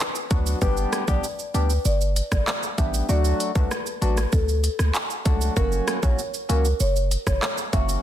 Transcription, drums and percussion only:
0.00 clap, shaker
0.15 shaker
0.31 kick, closed hi-hat, shaker
0.47 shaker
0.62 kick, shaker
0.77 shaker
0.93 cross-stick, closed hi-hat, shaker
1.08 kick, shaker
1.24 shaker
1.39 shaker
1.55 closed hi-hat, shaker
1.70 shaker
1.85 shaker
2.01 shaker
2.16 closed hi-hat, shaker
2.32 kick, cross-stick, shaker
2.47 cross-stick, clap, shaker
2.63 shaker
2.78 kick, closed hi-hat, shaker
2.94 shaker
3.09 shaker
3.25 shaker
3.40 closed hi-hat, shaker
3.55 kick, shaker
3.71 cross-stick, shaker
3.86 shaker
4.02 closed hi-hat, shaker
4.17 cross-stick, shaker
4.33 kick, shaker
4.49 shaker
4.64 closed hi-hat, shaker
4.79 cross-stick, shaker
4.95 clap, shaker
5.10 shaker
5.26 kick, closed hi-hat, shaker
5.41 shaker
5.57 kick, shaker
5.72 shaker
5.88 cross-stick, closed hi-hat, shaker
6.03 kick, shaker
6.19 shaker
6.34 shaker
6.50 closed hi-hat, shaker
6.65 shaker
6.80 shaker
6.96 shaker
7.11 closed hi-hat, shaker
7.27 kick, cross-stick, shaker
7.42 cross-stick, clap, shaker
7.58 shaker
7.73 kick, closed hi-hat, shaker
7.89 shaker

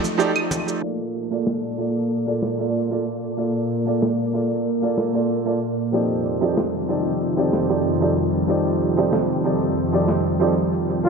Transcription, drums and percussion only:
0.04 muted conga, cabasa
0.20 cabasa
0.36 claves
0.51 muted conga, cabasa
0.68 cabasa
1.15 cabasa
1.32 cabasa
1.47 snare
1.79 cabasa
1.96 cabasa
2.11 cabasa
2.42 snare, cabasa
2.60 cabasa
2.75 cabasa
3.07 cabasa
3.24 cabasa
3.39 cabasa
3.71 cabasa
3.88 cabasa
4.02 snare
4.35 cabasa
4.51 cabasa
4.66 cabasa
4.98 snare, cabasa
5.15 cabasa
5.30 cabasa
5.62 cabasa
5.79 cabasa
5.94 cabasa
6.26 cabasa
6.43 cabasa
6.57 snare
6.90 cabasa
7.06 cabasa
7.22 cabasa
7.53 snare, cabasa
7.70 cabasa
7.86 cabasa
8.18 cabasa
8.34 cabasa
8.49 cabasa
8.81 cabasa
8.98 cabasa
9.13 snare
9.45 cabasa
9.62 cabasa
9.77 cabasa
10.08 snare, cabasa
10.26 cabasa
10.41 cabasa
10.73 cabasa
10.90 cabasa
11.05 cabasa

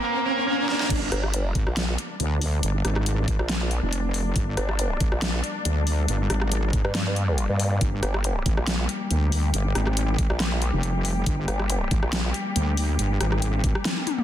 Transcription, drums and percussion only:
0.69 snare
0.80 snare
0.90 kick, closed hi-hat, crash
1.12 cross-stick, closed hi-hat
1.23 cross-stick
1.34 closed hi-hat
1.55 kick, closed hi-hat
1.67 cross-stick
1.77 snare, closed hi-hat
1.98 closed hi-hat
2.20 closed hi-hat
2.41 open hi-hat
2.63 closed hi-hat
2.85 cross-stick, closed hi-hat
2.96 cross-stick
3.06 closed hi-hat
3.28 kick, closed hi-hat
3.39 cross-stick
3.49 snare, closed hi-hat
3.71 closed hi-hat
3.93 closed hi-hat
4.14 open hi-hat
4.36 kick, closed hi-hat
4.57 cross-stick, closed hi-hat
4.69 cross-stick
4.79 closed hi-hat
5.00 kick, closed hi-hat
5.12 cross-stick
5.22 snare, closed hi-hat
5.44 closed hi-hat
5.65 closed hi-hat
5.87 open hi-hat
6.08 closed hi-hat
6.30 cross-stick, closed hi-hat
6.42 cross-stick
6.52 closed hi-hat
6.73 kick, closed hi-hat
6.85 cross-stick
6.95 snare, closed hi-hat
7.16 closed hi-hat
7.38 closed hi-hat
7.60 open hi-hat
7.81 kick, closed hi-hat
8.03 cross-stick, closed hi-hat
8.14 cross-stick
8.24 closed hi-hat
8.46 kick, closed hi-hat
8.57 cross-stick
8.67 snare, closed hi-hat
8.89 closed hi-hat
9.11 closed hi-hat
9.32 open hi-hat
9.54 closed hi-hat
9.75 cross-stick, closed hi-hat
9.87 cross-stick
9.97 closed hi-hat
10.18 kick, closed hi-hat
10.30 cross-stick
10.40 snare, closed hi-hat
10.62 closed hi-hat
10.83 closed hi-hat
11.05 open hi-hat
11.26 kick, closed hi-hat
11.48 cross-stick, closed hi-hat
11.59 cross-stick
11.70 closed hi-hat
11.91 kick, closed hi-hat
12.03 cross-stick
12.13 snare, closed hi-hat
12.34 closed hi-hat
12.56 closed hi-hat
12.77 open hi-hat
12.99 closed hi-hat
13.21 cross-stick, closed hi-hat
13.32 cross-stick
13.42 closed hi-hat
13.64 kick, closed hi-hat
13.75 cross-stick
13.85 snare, closed hi-hat, high tom
13.97 high tom
14.07 closed hi-hat, high tom
14.18 mid tom

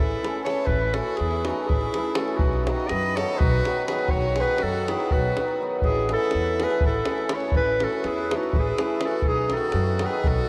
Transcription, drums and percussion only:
0.11 davul high
0.24 davul high
0.35 davul high
0.46 davul high
0.57 davul high
0.67 davul low
0.81 davul high
0.94 davul high
1.07 davul high
1.17 davul high
1.31 davul high
1.45 davul high
1.69 davul low
1.81 davul high
1.94 davul high
2.05 davul high
2.15 davul high
2.28 davul high
2.39 davul low
2.53 davul high
2.67 davul high
2.80 davul high
2.89 davul high
3.03 davul high
3.17 davul high
3.28 davul high
3.40 davul low
3.54 davul high
3.65 davul high
3.88 davul high
3.98 davul high
4.08 davul low
4.22 davul high
4.36 davul high
4.48 davul high
4.58 davul high
4.74 davul high
4.88 davul high
5.00 davul high
5.11 davul low
5.37 davul high
5.48 davul high
5.82 davul low
5.95 davul high
6.09 davul high
6.20 davul high
6.31 davul high
6.46 davul high
6.60 davul high
6.71 davul high
6.81 davul low
6.94 davul high
7.05 davul high
7.18 davul high
7.29 davul high
7.40 davul high
7.52 davul low
7.66 davul high
7.80 davul high
7.93 davul high
8.04 davul high
8.18 davul high
8.31 davul high
8.43 davul high
8.53 davul low
8.67 davul high
8.78 davul high
8.90 davul high
9.01 davul high
9.11 davul high
9.22 davul low
9.36 davul high
9.50 davul high
9.61 davul high
9.72 davul high
9.87 davul high
9.99 davul high
10.11 davul high
10.24 davul low
10.36 davul high

